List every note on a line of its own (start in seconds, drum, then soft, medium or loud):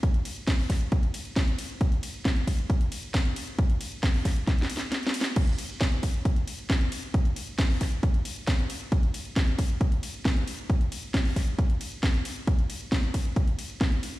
0.03 kick loud
0.03 closed hi-hat medium
0.14 closed hi-hat medium
0.25 open hi-hat loud
0.25 ride medium
0.36 closed hi-hat medium
0.47 kick loud
0.47 snare loud
0.47 closed hi-hat medium
0.59 open hi-hat medium
0.70 kick medium
0.70 snare soft
0.70 open hi-hat loud
0.70 ride medium
0.81 closed hi-hat medium
0.92 kick loud
0.92 closed hi-hat medium
1.03 closed hi-hat medium
1.14 open hi-hat loud
1.14 ride medium
1.25 closed hi-hat medium
1.36 kick loud
1.36 snare loud
1.36 closed hi-hat medium
1.48 closed hi-hat medium
1.58 open hi-hat loud
1.58 ride medium
1.70 closed hi-hat medium
1.81 kick loud
1.81 closed hi-hat medium
1.92 closed hi-hat medium
2.03 open hi-hat loud
2.03 ride medium
2.14 closed hi-hat medium
2.25 kick loud
2.25 snare loud
2.25 closed hi-hat medium
2.36 closed hi-hat medium
2.47 kick medium
2.47 open hi-hat loud
2.47 ride medium
2.59 closed hi-hat medium
2.70 kick loud
2.70 closed hi-hat medium
2.81 closed hi-hat medium
2.92 open hi-hat loud
2.92 ride medium
3.03 closed hi-hat medium
3.14 kick loud
3.14 snare loud
3.14 closed hi-hat medium
3.25 closed hi-hat medium
3.36 open hi-hat loud
3.36 ride medium
3.47 closed hi-hat medium
3.58 kick loud
3.58 closed hi-hat medium
3.69 closed hi-hat medium
3.81 open hi-hat loud
3.81 ride medium
3.92 closed hi-hat medium
4.03 kick loud
4.03 snare loud
4.03 closed hi-hat medium
4.14 open hi-hat medium
4.25 kick medium
4.25 snare soft
4.25 open hi-hat loud
4.25 ride medium
4.36 closed hi-hat medium
4.47 kick loud
4.47 snare medium
4.47 closed hi-hat medium
4.58 snare medium
4.58 closed hi-hat medium
4.70 open hi-hat loud
4.70 ride medium
4.77 snare medium
4.77 closed hi-hat medium
4.92 snare medium
4.92 closed hi-hat medium
5.03 snare loud
5.03 closed hi-hat medium
5.14 open hi-hat loud
5.14 ride medium
5.21 snare loud
5.21 closed hi-hat medium
5.36 kick loud
5.36 closed hi-hat medium
5.36 crash medium
5.47 closed hi-hat medium
5.58 open hi-hat loud
5.58 ride medium
5.70 closed hi-hat medium
5.81 kick loud
5.81 snare loud
5.81 closed hi-hat medium
5.92 closed hi-hat medium
6.03 kick medium
6.03 open hi-hat loud
6.03 ride medium
6.14 closed hi-hat medium
6.25 kick loud
6.25 closed hi-hat medium
6.36 closed hi-hat medium
6.47 open hi-hat loud
6.47 ride medium
6.59 closed hi-hat medium
6.70 kick loud
6.70 snare loud
6.70 closed hi-hat medium
6.81 closed hi-hat medium
6.92 open hi-hat loud
6.92 ride medium
7.03 closed hi-hat medium
7.14 kick loud
7.14 closed hi-hat medium
7.25 closed hi-hat medium
7.36 open hi-hat loud
7.36 ride medium
7.47 closed hi-hat medium
7.59 kick loud
7.59 snare loud
7.59 closed hi-hat medium
7.70 open hi-hat medium
7.81 kick medium
7.81 snare soft
7.81 open hi-hat loud
7.81 ride medium
7.92 closed hi-hat medium
8.03 kick loud
8.03 closed hi-hat medium
8.14 closed hi-hat medium
8.25 open hi-hat loud
8.25 ride medium
8.36 closed hi-hat medium
8.47 kick loud
8.47 snare loud
8.47 closed hi-hat medium
8.59 closed hi-hat medium
8.70 open hi-hat loud
8.70 ride medium
8.81 closed hi-hat medium
8.92 kick loud
8.92 closed hi-hat medium
9.03 closed hi-hat soft
9.14 open hi-hat loud
9.14 ride medium
9.25 closed hi-hat medium
9.36 kick loud
9.36 snare loud
9.36 closed hi-hat medium
9.47 closed hi-hat medium
9.59 kick medium
9.59 open hi-hat loud
9.59 ride medium
9.70 closed hi-hat medium
9.81 kick loud
9.81 closed hi-hat medium
9.92 closed hi-hat medium
10.03 open hi-hat loud
10.03 ride medium
10.14 closed hi-hat medium
10.25 kick loud
10.25 snare loud
10.25 closed hi-hat medium
10.36 closed hi-hat medium
10.47 open hi-hat loud
10.47 ride medium
10.59 closed hi-hat medium
10.70 kick loud
10.70 closed hi-hat medium
10.81 closed hi-hat soft
10.92 open hi-hat loud
10.92 ride medium
11.03 closed hi-hat medium
11.14 kick loud
11.14 snare loud
11.14 closed hi-hat medium
11.25 open hi-hat medium
11.36 kick medium
11.36 snare soft
11.36 open hi-hat loud
11.36 ride medium
11.59 kick loud
11.59 closed hi-hat medium
11.70 closed hi-hat medium
11.81 open hi-hat loud
11.81 ride medium
11.92 closed hi-hat medium
12.03 kick loud
12.03 snare loud
12.03 closed hi-hat medium
12.14 closed hi-hat medium
12.25 open hi-hat loud
12.25 ride medium
12.36 closed hi-hat medium
12.47 kick loud
12.47 closed hi-hat medium
12.59 closed hi-hat soft
12.70 open hi-hat loud
12.70 ride medium
12.81 closed hi-hat medium
12.92 kick loud
12.92 snare loud
12.92 closed hi-hat medium
13.03 closed hi-hat medium
13.14 kick medium
13.14 open hi-hat loud
13.14 ride medium
13.25 closed hi-hat soft
13.36 kick loud
13.36 closed hi-hat medium
13.47 closed hi-hat medium
13.59 open hi-hat loud
13.59 ride medium
13.70 closed hi-hat medium
13.81 kick loud
13.81 snare loud
13.81 closed hi-hat medium
13.92 closed hi-hat medium
14.03 open hi-hat loud
14.03 ride medium
14.14 closed hi-hat medium